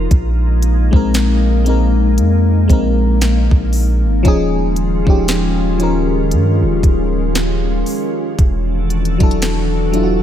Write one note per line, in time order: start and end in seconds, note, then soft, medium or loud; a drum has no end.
0.00 4.21 D#4 medium
0.11 0.90 A#1 loud
0.11 4.21 G#3 medium
0.11 4.21 A#3 medium
0.11 kick loud
0.11 closed hi-hat medium
0.62 closed hi-hat medium
0.91 2.20 A#1 loud
0.91 1.55 G#3 medium
0.91 1.56 C4 medium
0.91 1.56 D#4 medium
0.91 kick loud
0.96 1.57 A#4 medium
1.14 snare loud
1.14 closed hi-hat medium
1.64 2.55 G#3 medium
1.64 2.56 C4 medium
1.64 2.56 D#4 medium
1.64 closed hi-hat medium
1.69 2.57 A#4 medium
2.18 2.67 F2 medium
2.18 closed hi-hat medium
2.68 3.48 A#1 loud
2.68 4.03 G#3 medium
2.68 4.04 C4 medium
2.68 4.05 D#4 medium
2.68 kick loud
2.68 closed hi-hat medium
2.73 4.05 A#4 medium
3.21 snare loud
3.21 closed hi-hat medium
3.51 4.05 A#1 loud
3.51 kick loud
3.73 open hi-hat medium
4.04 4.24 G#1 loud
4.23 5.03 D#1 loud
4.23 8.34 D#3 medium
4.23 4.91 F3 loud
4.23 8.34 G#3 medium
4.23 8.35 C#4 medium
4.23 4.92 C#4 loud
4.23 4.93 D#4 loud
4.23 8.34 F4 medium
4.23 kick loud
4.23 closed hi-hat medium
4.28 4.94 G#4 loud
4.76 closed hi-hat medium
5.05 6.34 D#1 loud
5.05 5.69 F3 medium
5.05 5.70 C#4 medium
5.05 5.70 D#4 medium
5.05 kick loud
5.10 5.71 G4 loud
5.28 snare loud
5.28 closed hi-hat medium
5.78 7.56 F3 medium
5.78 7.57 C#4 medium
5.78 7.57 D#4 medium
5.78 closed hi-hat medium
5.83 7.58 A#4 medium
6.31 6.64 G2 loud
6.31 closed hi-hat medium
6.62 6.83 D#1 loud
6.83 7.83 D#1 loud
6.83 kick loud
6.83 closed hi-hat medium
7.35 snare loud
7.35 closed hi-hat medium
7.86 open hi-hat medium
8.39 9.17 E1 loud
8.39 10.23 E3 medium
8.39 10.23 D4 medium
8.39 10.23 F#4 medium
8.39 10.23 A4 medium
8.39 kick loud
8.39 closed hi-hat medium
8.90 closed hi-hat medium
9.05 closed hi-hat medium
9.18 10.23 E1 loud
9.18 9.82 F#3 medium
9.18 9.83 D4 medium
9.18 9.84 E4 medium
9.18 kick loud
9.18 closed hi-hat medium
9.23 9.85 A4 loud
9.31 closed hi-hat medium
9.42 snare loud
9.42 closed hi-hat medium
9.92 10.23 F#3 medium
9.92 10.23 D4 medium
9.92 10.23 E4 medium
9.92 closed hi-hat medium
9.97 10.03 F4 medium
10.03 10.23 F#4 medium